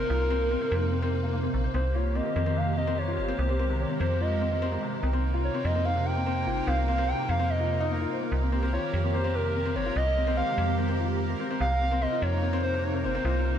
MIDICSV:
0, 0, Header, 1, 6, 480
1, 0, Start_track
1, 0, Tempo, 410959
1, 114, Time_signature, 4, 2, 24, 8
1, 15868, End_track
2, 0, Start_track
2, 0, Title_t, "Soft synth lead"
2, 0, Program_c, 0, 80
2, 0, Note_on_c, 0, 70, 91
2, 1507, Note_off_c, 0, 70, 0
2, 2038, Note_on_c, 0, 72, 96
2, 2277, Note_on_c, 0, 73, 91
2, 2294, Note_off_c, 0, 72, 0
2, 2516, Note_on_c, 0, 75, 104
2, 2534, Note_off_c, 0, 73, 0
2, 3000, Note_on_c, 0, 77, 116
2, 3018, Note_off_c, 0, 75, 0
2, 3232, Note_off_c, 0, 77, 0
2, 3239, Note_on_c, 0, 75, 102
2, 3481, Note_on_c, 0, 73, 107
2, 3498, Note_off_c, 0, 75, 0
2, 3959, Note_on_c, 0, 72, 97
2, 3977, Note_off_c, 0, 73, 0
2, 4437, Note_on_c, 0, 73, 91
2, 4455, Note_off_c, 0, 72, 0
2, 4670, Note_off_c, 0, 73, 0
2, 4677, Note_on_c, 0, 72, 89
2, 4917, Note_on_c, 0, 75, 93
2, 4934, Note_off_c, 0, 72, 0
2, 5636, Note_off_c, 0, 75, 0
2, 6356, Note_on_c, 0, 73, 94
2, 6597, Note_on_c, 0, 75, 95
2, 6615, Note_off_c, 0, 73, 0
2, 6829, Note_off_c, 0, 75, 0
2, 6836, Note_on_c, 0, 77, 109
2, 7072, Note_on_c, 0, 79, 113
2, 7090, Note_off_c, 0, 77, 0
2, 7794, Note_on_c, 0, 77, 105
2, 7811, Note_off_c, 0, 79, 0
2, 8028, Note_off_c, 0, 77, 0
2, 8035, Note_on_c, 0, 77, 102
2, 8273, Note_on_c, 0, 79, 102
2, 8291, Note_off_c, 0, 77, 0
2, 8513, Note_on_c, 0, 77, 94
2, 8530, Note_off_c, 0, 79, 0
2, 8755, Note_on_c, 0, 75, 85
2, 8772, Note_off_c, 0, 77, 0
2, 9235, Note_off_c, 0, 75, 0
2, 10195, Note_on_c, 0, 73, 93
2, 10679, Note_on_c, 0, 72, 98
2, 10697, Note_off_c, 0, 73, 0
2, 10918, Note_on_c, 0, 70, 93
2, 10935, Note_off_c, 0, 72, 0
2, 11391, Note_off_c, 0, 70, 0
2, 11398, Note_on_c, 0, 73, 99
2, 11638, Note_on_c, 0, 75, 110
2, 11655, Note_off_c, 0, 73, 0
2, 12107, Note_off_c, 0, 75, 0
2, 12114, Note_on_c, 0, 77, 103
2, 12561, Note_off_c, 0, 77, 0
2, 13553, Note_on_c, 0, 77, 117
2, 14033, Note_on_c, 0, 75, 104
2, 14051, Note_off_c, 0, 77, 0
2, 14275, Note_on_c, 0, 73, 103
2, 14292, Note_off_c, 0, 75, 0
2, 14743, Note_off_c, 0, 73, 0
2, 14750, Note_on_c, 0, 72, 92
2, 14989, Note_on_c, 0, 73, 94
2, 15007, Note_off_c, 0, 72, 0
2, 15231, Note_on_c, 0, 72, 88
2, 15248, Note_off_c, 0, 73, 0
2, 15868, Note_off_c, 0, 72, 0
2, 15868, End_track
3, 0, Start_track
3, 0, Title_t, "Synth texture"
3, 0, Program_c, 1, 99
3, 0, Note_on_c, 1, 58, 88
3, 0, Note_on_c, 1, 84, 82
3, 2025, Note_off_c, 1, 58, 0
3, 2038, Note_on_c, 1, 70, 87
3, 2039, Note_on_c, 1, 58, 85
3, 2045, Note_off_c, 1, 84, 0
3, 15868, Note_off_c, 1, 58, 0
3, 15868, Note_off_c, 1, 70, 0
3, 15868, End_track
4, 0, Start_track
4, 0, Title_t, "Felt piano"
4, 0, Program_c, 2, 0
4, 0, Control_c, 2, 64, 127
4, 0, Note_on_c, 2, 48, 76
4, 0, Note_on_c, 2, 60, 103
4, 0, Note_on_c, 2, 65, 79
4, 115, Note_off_c, 2, 65, 0
4, 115, Note_on_c, 2, 65, 82
4, 218, Note_off_c, 2, 65, 0
4, 355, Note_off_c, 2, 60, 0
4, 355, Note_on_c, 2, 60, 105
4, 469, Note_off_c, 2, 60, 0
4, 595, Note_on_c, 2, 60, 100
4, 657, Note_off_c, 2, 60, 0
4, 715, Note_on_c, 2, 60, 103
4, 777, Note_off_c, 2, 60, 0
4, 835, Note_off_c, 2, 48, 0
4, 835, Note_on_c, 2, 48, 73
4, 938, Note_off_c, 2, 48, 0
4, 1075, Note_on_c, 2, 60, 81
4, 1137, Note_off_c, 2, 60, 0
4, 1194, Note_on_c, 2, 60, 108
4, 1298, Note_off_c, 2, 60, 0
4, 1434, Note_on_c, 2, 58, 72
4, 1536, Note_off_c, 2, 58, 0
4, 1553, Note_on_c, 2, 58, 85
4, 1658, Note_off_c, 2, 58, 0
4, 1673, Note_on_c, 2, 60, 80
4, 1777, Note_off_c, 2, 60, 0
4, 1913, Note_on_c, 2, 72, 77
4, 2017, Note_off_c, 2, 72, 0
4, 2033, Note_on_c, 2, 60, 104
4, 2049, Control_c, 2, 64, 0
4, 2137, Note_off_c, 2, 60, 0
4, 2243, Control_c, 2, 64, 127
4, 2275, Note_on_c, 2, 65, 78
4, 2378, Note_off_c, 2, 65, 0
4, 2514, Note_on_c, 2, 60, 97
4, 2616, Note_off_c, 2, 60, 0
4, 2634, Note_on_c, 2, 60, 76
4, 2736, Note_off_c, 2, 60, 0
4, 2754, Note_on_c, 2, 60, 97
4, 2816, Note_off_c, 2, 60, 0
4, 2874, Note_on_c, 2, 60, 98
4, 2936, Note_off_c, 2, 60, 0
4, 2994, Note_on_c, 2, 48, 81
4, 3098, Note_off_c, 2, 48, 0
4, 3234, Note_on_c, 2, 60, 76
4, 3297, Note_off_c, 2, 60, 0
4, 3354, Note_on_c, 2, 60, 104
4, 3458, Note_off_c, 2, 60, 0
4, 3594, Note_on_c, 2, 65, 81
4, 3698, Note_off_c, 2, 65, 0
4, 3835, Note_on_c, 2, 60, 103
4, 3937, Note_off_c, 2, 60, 0
4, 3954, Note_on_c, 2, 60, 84
4, 3972, Control_c, 2, 64, 0
4, 4057, Note_off_c, 2, 60, 0
4, 4074, Note_on_c, 2, 60, 98
4, 4136, Note_off_c, 2, 60, 0
4, 4156, Control_c, 2, 64, 127
4, 4194, Note_on_c, 2, 60, 98
4, 4256, Note_off_c, 2, 60, 0
4, 4313, Note_on_c, 2, 48, 79
4, 4418, Note_off_c, 2, 48, 0
4, 4553, Note_on_c, 2, 60, 78
4, 4616, Note_off_c, 2, 60, 0
4, 4673, Note_on_c, 2, 60, 96
4, 4778, Note_off_c, 2, 60, 0
4, 4914, Note_on_c, 2, 65, 78
4, 5018, Note_off_c, 2, 65, 0
4, 5153, Note_on_c, 2, 60, 95
4, 5256, Note_off_c, 2, 60, 0
4, 5274, Note_on_c, 2, 60, 77
4, 5377, Note_off_c, 2, 60, 0
4, 5394, Note_on_c, 2, 60, 110
4, 5457, Note_off_c, 2, 60, 0
4, 5514, Note_on_c, 2, 60, 99
4, 5576, Note_off_c, 2, 60, 0
4, 5634, Note_on_c, 2, 48, 79
4, 5738, Note_off_c, 2, 48, 0
4, 5875, Note_on_c, 2, 60, 88
4, 5888, Control_c, 2, 64, 0
4, 5937, Note_off_c, 2, 60, 0
4, 5994, Note_on_c, 2, 60, 100
4, 6098, Note_off_c, 2, 60, 0
4, 6129, Control_c, 2, 64, 127
4, 6234, Note_on_c, 2, 65, 77
4, 6338, Note_off_c, 2, 65, 0
4, 6474, Note_on_c, 2, 60, 96
4, 6578, Note_off_c, 2, 60, 0
4, 6595, Note_on_c, 2, 60, 77
4, 6698, Note_off_c, 2, 60, 0
4, 6715, Note_on_c, 2, 60, 101
4, 6777, Note_off_c, 2, 60, 0
4, 6834, Note_on_c, 2, 60, 100
4, 6896, Note_off_c, 2, 60, 0
4, 6955, Note_on_c, 2, 48, 80
4, 7059, Note_off_c, 2, 48, 0
4, 7194, Note_on_c, 2, 60, 79
4, 7257, Note_off_c, 2, 60, 0
4, 7315, Note_on_c, 2, 60, 105
4, 7419, Note_off_c, 2, 60, 0
4, 7554, Note_on_c, 2, 65, 79
4, 7658, Note_off_c, 2, 65, 0
4, 7794, Note_on_c, 2, 60, 107
4, 7896, Note_off_c, 2, 60, 0
4, 7914, Note_on_c, 2, 60, 75
4, 8017, Note_off_c, 2, 60, 0
4, 8034, Note_on_c, 2, 60, 98
4, 8097, Note_off_c, 2, 60, 0
4, 8154, Note_on_c, 2, 60, 107
4, 8217, Note_off_c, 2, 60, 0
4, 8275, Note_on_c, 2, 48, 83
4, 8378, Note_off_c, 2, 48, 0
4, 8515, Note_on_c, 2, 60, 75
4, 8577, Note_off_c, 2, 60, 0
4, 8635, Note_on_c, 2, 60, 102
4, 8739, Note_off_c, 2, 60, 0
4, 8876, Note_on_c, 2, 65, 78
4, 8979, Note_off_c, 2, 65, 0
4, 9115, Note_on_c, 2, 63, 102
4, 9177, Note_off_c, 2, 63, 0
4, 9235, Note_on_c, 2, 58, 84
4, 9297, Note_off_c, 2, 58, 0
4, 9355, Note_on_c, 2, 65, 80
4, 9458, Note_off_c, 2, 65, 0
4, 9475, Note_on_c, 2, 72, 78
4, 9579, Note_off_c, 2, 72, 0
4, 9595, Note_on_c, 2, 58, 74
4, 9698, Note_off_c, 2, 58, 0
4, 9727, Control_c, 2, 64, 0
4, 9834, Note_on_c, 2, 60, 76
4, 9896, Note_off_c, 2, 60, 0
4, 9953, Note_on_c, 2, 60, 98
4, 9962, Control_c, 2, 64, 127
4, 10056, Note_off_c, 2, 60, 0
4, 10074, Note_on_c, 2, 60, 102
4, 10188, Note_off_c, 2, 60, 0
4, 10195, Note_on_c, 2, 65, 80
4, 10298, Note_off_c, 2, 65, 0
4, 10555, Note_on_c, 2, 60, 75
4, 10658, Note_off_c, 2, 60, 0
4, 10675, Note_on_c, 2, 60, 99
4, 10737, Note_off_c, 2, 60, 0
4, 10794, Note_on_c, 2, 60, 105
4, 10857, Note_off_c, 2, 60, 0
4, 10914, Note_on_c, 2, 48, 75
4, 11018, Note_off_c, 2, 48, 0
4, 11154, Note_on_c, 2, 60, 84
4, 11217, Note_off_c, 2, 60, 0
4, 11275, Note_on_c, 2, 60, 102
4, 11378, Note_off_c, 2, 60, 0
4, 11395, Note_on_c, 2, 60, 99
4, 11509, Note_off_c, 2, 60, 0
4, 11514, Note_on_c, 2, 65, 78
4, 11618, Note_off_c, 2, 65, 0
4, 11652, Control_c, 2, 64, 0
4, 11832, Control_c, 2, 64, 127
4, 11873, Note_on_c, 2, 60, 75
4, 11976, Note_off_c, 2, 60, 0
4, 11994, Note_on_c, 2, 60, 109
4, 12056, Note_off_c, 2, 60, 0
4, 12115, Note_on_c, 2, 60, 98
4, 12177, Note_off_c, 2, 60, 0
4, 12234, Note_on_c, 2, 48, 73
4, 12338, Note_off_c, 2, 48, 0
4, 12474, Note_on_c, 2, 60, 77
4, 12536, Note_off_c, 2, 60, 0
4, 12594, Note_on_c, 2, 60, 100
4, 12696, Note_off_c, 2, 60, 0
4, 12714, Note_on_c, 2, 60, 106
4, 12828, Note_off_c, 2, 60, 0
4, 12835, Note_on_c, 2, 65, 78
4, 12939, Note_off_c, 2, 65, 0
4, 13195, Note_on_c, 2, 60, 80
4, 13298, Note_off_c, 2, 60, 0
4, 13315, Note_on_c, 2, 60, 100
4, 13377, Note_off_c, 2, 60, 0
4, 13436, Note_on_c, 2, 60, 104
4, 13498, Note_off_c, 2, 60, 0
4, 13556, Note_on_c, 2, 48, 88
4, 13570, Control_c, 2, 64, 0
4, 13659, Note_off_c, 2, 48, 0
4, 13786, Control_c, 2, 64, 127
4, 13795, Note_on_c, 2, 60, 75
4, 13857, Note_off_c, 2, 60, 0
4, 13915, Note_on_c, 2, 60, 104
4, 14018, Note_off_c, 2, 60, 0
4, 14035, Note_on_c, 2, 60, 102
4, 14149, Note_off_c, 2, 60, 0
4, 14155, Note_on_c, 2, 65, 76
4, 14258, Note_off_c, 2, 65, 0
4, 14515, Note_on_c, 2, 60, 79
4, 14618, Note_off_c, 2, 60, 0
4, 14635, Note_on_c, 2, 60, 110
4, 14697, Note_off_c, 2, 60, 0
4, 14756, Note_on_c, 2, 60, 99
4, 14817, Note_off_c, 2, 60, 0
4, 14875, Note_on_c, 2, 48, 77
4, 14979, Note_off_c, 2, 48, 0
4, 15115, Note_on_c, 2, 60, 79
4, 15177, Note_off_c, 2, 60, 0
4, 15235, Note_on_c, 2, 60, 100
4, 15337, Note_off_c, 2, 60, 0
4, 15355, Note_on_c, 2, 60, 107
4, 15469, Note_off_c, 2, 60, 0
4, 15475, Note_on_c, 2, 65, 91
4, 15578, Note_off_c, 2, 65, 0
4, 15868, End_track
5, 0, Start_track
5, 0, Title_t, "Analog synth pad"
5, 0, Program_c, 3, 89
5, 0, Note_on_c, 3, 48, 81
5, 0, Note_on_c, 3, 58, 77
5, 0, Note_on_c, 3, 63, 90
5, 1997, Note_off_c, 3, 48, 0
5, 1997, Note_off_c, 3, 63, 0
5, 2038, Note_on_c, 3, 51, 86
5, 2038, Note_on_c, 3, 67, 97
5, 3908, Note_off_c, 3, 58, 0
5, 3937, Note_off_c, 3, 51, 0
5, 3957, Note_on_c, 3, 56, 74
5, 3958, Note_on_c, 3, 51, 85
5, 5838, Note_off_c, 3, 67, 0
5, 5856, Note_off_c, 3, 56, 0
5, 5857, Note_off_c, 3, 51, 0
5, 5877, Note_on_c, 3, 58, 78
5, 5877, Note_on_c, 3, 63, 93
5, 5878, Note_on_c, 3, 48, 89
5, 9677, Note_off_c, 3, 63, 0
5, 9678, Note_off_c, 3, 48, 0
5, 9714, Note_on_c, 3, 51, 88
5, 9714, Note_on_c, 3, 67, 92
5, 11589, Note_off_c, 3, 58, 0
5, 11615, Note_off_c, 3, 67, 0
5, 11635, Note_on_c, 3, 67, 97
5, 11636, Note_on_c, 3, 56, 79
5, 13516, Note_off_c, 3, 51, 0
5, 13536, Note_off_c, 3, 56, 0
5, 13536, Note_off_c, 3, 67, 0
5, 13551, Note_on_c, 3, 48, 83
5, 13552, Note_on_c, 3, 63, 96
5, 13553, Note_on_c, 3, 58, 76
5, 15868, Note_off_c, 3, 48, 0
5, 15868, Note_off_c, 3, 58, 0
5, 15868, Note_off_c, 3, 63, 0
5, 15868, End_track
6, 0, Start_track
6, 0, Title_t, "FM bass"
6, 0, Program_c, 4, 39
6, 115, Note_on_c, 4, 36, 98
6, 660, Note_off_c, 4, 36, 0
6, 836, Note_on_c, 4, 41, 106
6, 1740, Note_off_c, 4, 41, 0
6, 1797, Note_on_c, 4, 34, 82
6, 1967, Note_off_c, 4, 34, 0
6, 2036, Note_on_c, 4, 36, 102
6, 2580, Note_off_c, 4, 36, 0
6, 2756, Note_on_c, 4, 41, 99
6, 3716, Note_on_c, 4, 31, 107
6, 3733, Note_off_c, 4, 41, 0
6, 3886, Note_off_c, 4, 31, 0
6, 3956, Note_on_c, 4, 36, 98
6, 4500, Note_off_c, 4, 36, 0
6, 4677, Note_on_c, 4, 41, 103
6, 5581, Note_off_c, 4, 41, 0
6, 5876, Note_on_c, 4, 36, 102
6, 6420, Note_off_c, 4, 36, 0
6, 6595, Note_on_c, 4, 41, 102
6, 7555, Note_on_c, 4, 31, 106
6, 7572, Note_off_c, 4, 41, 0
6, 7726, Note_off_c, 4, 31, 0
6, 7795, Note_on_c, 4, 36, 104
6, 8340, Note_off_c, 4, 36, 0
6, 8514, Note_on_c, 4, 41, 100
6, 9419, Note_off_c, 4, 41, 0
6, 9716, Note_on_c, 4, 36, 105
6, 10260, Note_off_c, 4, 36, 0
6, 10437, Note_on_c, 4, 41, 101
6, 11396, Note_on_c, 4, 31, 105
6, 11413, Note_off_c, 4, 41, 0
6, 11566, Note_off_c, 4, 31, 0
6, 11634, Note_on_c, 4, 36, 106
6, 12179, Note_off_c, 4, 36, 0
6, 12355, Note_on_c, 4, 41, 107
6, 13260, Note_off_c, 4, 41, 0
6, 13554, Note_on_c, 4, 36, 105
6, 14100, Note_off_c, 4, 36, 0
6, 14274, Note_on_c, 4, 41, 106
6, 15233, Note_on_c, 4, 31, 107
6, 15251, Note_off_c, 4, 41, 0
6, 15405, Note_off_c, 4, 31, 0
6, 15473, Note_on_c, 4, 36, 105
6, 15868, Note_off_c, 4, 36, 0
6, 15868, End_track
0, 0, End_of_file